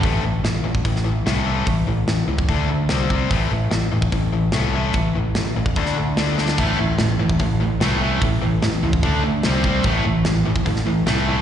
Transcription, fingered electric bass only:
\new Staff \with { instrumentName = "Fingered electric bass" } { \clef bass \time 4/4 \key a \minor \tempo 4 = 147 a,,8 a,,8 a,,8 a,,8 a,,4 c,4 | a,,8 a,,8 a,,8 cis,8 d,4 c,4 | a,,8 a,,8 a,,8 a,,8 a,,4 c,4 | a,,8 a,,8 a,,8 a,,8 d,4 d,4 |
a,,8 a,,8 a,,8 a,,8 a,,4 c,4 | a,,8 a,,8 a,,8 cis,8 d,4 c,4 | a,,8 a,,8 a,,8 a,,8 a,,4 c,4 | }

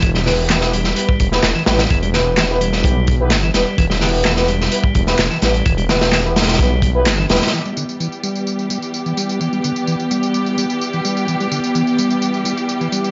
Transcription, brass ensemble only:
\new Staff \with { instrumentName = "Brass ensemble" } { \time 4/4 \key e \minor \tempo 4 = 128 r8 <b e' g' b'>8. <b e' g' b'>16 r8 <b e' g' b'>16 r8 <b e' g' b'>16 r8 <b e' g' b'>16 r16 | r8 <b e' g' b'>8. <b e' g' b'>16 r8 <b e' g' b'>16 r8 <b e' g' b'>16 r8 <b e' g' b'>16 r16 | r8 <b e' g' b'>8. <b e' g' b'>16 r8 <b e' g' b'>16 r8 <b e' g' b'>16 r8 <b e' g' b'>16 r16 | r8 <b e' g' b'>8. <b e' g' b'>16 r8 <b e' g' b'>16 r8 <b e' g' b'>16 r8 <b e' g' b'>16 r16 |
r1 | r1 | r1 | }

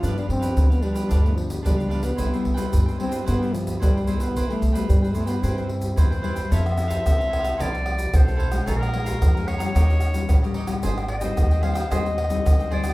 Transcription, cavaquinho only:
\new Staff \with { instrumentName = "Cavaquinho" } { \time 4/4 \key c \major \tempo 4 = 111 <d' g' b' f''>16 <g' b' f''>16 r16 <g' b' f''>8 <g' b' f''>16 <d' g' b' f''>16 <g' b' f''>16 <d' g' b' f''>16 <g' b' f''>16 r8 <d' g' b' f''>16 <g' b' f''>16 <d' g' b' f''>16 <g' b' f''>16 | <e' b' c'' g''>16 <b' c'' g''>16 r16 <b' c'' g''>8 <b' c'' g''>16 <e' b' c'' g''>16 <b' c'' g''>16 <e' b' c'' g''>16 <b' c'' g''>16 r8 <e' b' c'' g''>16 <b' c'' g''>16 <e' b' c'' g''>16 <b' c'' g''>16 | <e' b' c'' g''>16 <b' c'' g''>16 r16 <b' c'' g''>8 <b' c'' g''>16 <e' b' c'' g''>16 <b' c'' g''>16 <e' b' c'' g''>16 <b' c'' g''>16 r8 <e' b' c'' g''>16 <b' c'' g''>16 <e' b' c'' g''>16 <b' c'' g''>16 | <e' a' c'' f''>16 <a' c'' f''>16 r16 <a' c'' f''>8 <a' c'' f''>16 <e' a' c'' f''>16 <a' c'' f''>16 <e' a' c'' f''>16 <a' c'' f''>16 r8. <a' c'' f''>16 <e' a' c'' f''>16 <a' c'' f''>16 |
<aes' des'' f'' bes''>16 <des'' f'' bes''>16 r16 <des'' f'' bes''>8 <des'' f'' bes''>16 <aes' des'' f'' bes''>16 <des'' f'' bes''>16 <ees' g' des'' ees''>16 <g' des'' ees''>16 r8. <g' des'' ees''>16 <ees' g' des'' ees''>16 <g' des'' ees''>16 | <aes' c'' ees'' g''>16 <c'' ees'' g''>16 r16 <c'' ees'' g''>8 <c'' ees'' g''>16 <aes' c'' ees'' g''>16 <c'' ees'' g''>16 <aes' c'' ees'' g''>16 <c'' ees'' g''>16 r8. <c'' ees'' g''>16 <aes' c'' ees'' g''>16 <c'' ees'' g''>16 | }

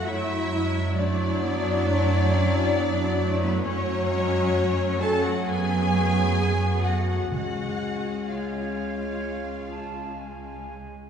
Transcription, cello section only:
\new Staff \with { instrumentName = "Cello section" } { \time 4/4 \key fis \minor \tempo 4 = 66 e'4 d'2~ d'8. b16 | cis'4. a'16 fis'16 gis'4. fis'8 | fis'4 eis'2~ eis'8 r8 | }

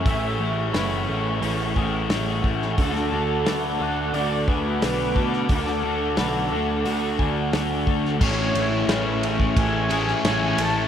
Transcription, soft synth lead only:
\new Staff \with { instrumentName = "Soft synth lead" } { \time 4/4 \key a \major \tempo 4 = 88 e''4 r2. | a'4. fis''8 d''8 b'4. | a'2. r4 | cis''4. r8 gis''4 gis''8 a''8 | }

